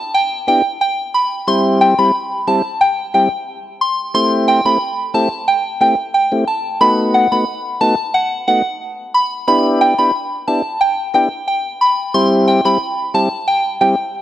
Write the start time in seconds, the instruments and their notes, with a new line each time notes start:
0.14 synth bell G5
0.47 tonewheel organ B3 D4 E4 G4, synth bell G5
0.81 synth bell G5
1.14 synth bell B5
1.47 tonewheel organ G3 C4 E4 G4, synth bell C6
1.81 synth bell G5
1.98 tonewheel organ G3 C4 E4 G4, synth bell B5
2.47 tonewheel organ G3 C4 E4 G4, synth bell A5
2.81 synth bell G5
3.14 tonewheel organ G3 C4 E4 G4, synth bell G5
3.81 synth bell C6
4.14 tonewheel organ A3 C4 E4 G4, synth bell C6
4.48 synth bell G5
4.65 tonewheel organ A3 C4 E4 G4, synth bell B5
5.14 tonewheel organ A3 C4 E4 G4, synth bell A5
5.48 synth bell G5
5.81 tonewheel organ A3 C4 E4 G4, synth bell G5
6.14 synth bell G5
6.32 tonewheel organ A3 C4 E4 G4
6.47 synth bell A5
6.81 tonewheel organ A3 B3 D#4 F#4, synth bell B5
7.14 synth bell F#5
7.32 tonewheel organ A3 B3 D#4 F#4, synth bell B5
7.81 tonewheel organ A3 B3 D#4 F#4, synth bell A5
8.14 synth bell F#5
8.48 tonewheel organ A3 B3 D#4 F#4, synth bell F#5
9.14 synth bell B5
9.48 tonewheel organ B3 D4 E4 G4, synth bell B5
9.81 synth bell G5
9.98 tonewheel organ B3 D4 E4 G4, synth bell B5
10.48 tonewheel organ B3 D4 E4 G4, synth bell A5
10.81 synth bell G5
11.14 tonewheel organ B3 D4 E4 G4, synth bell G5
11.48 synth bell G5
11.81 synth bell B5
12.14 tonewheel organ G3 C4 E4 G4, synth bell C6
12.48 synth bell G5
12.65 tonewheel organ G3 C4 E4 G4, synth bell B5
13.14 tonewheel organ G3 C4 E4 G4, synth bell A5
13.48 synth bell G5
13.81 tonewheel organ G3 C4 E4 G4, synth bell G5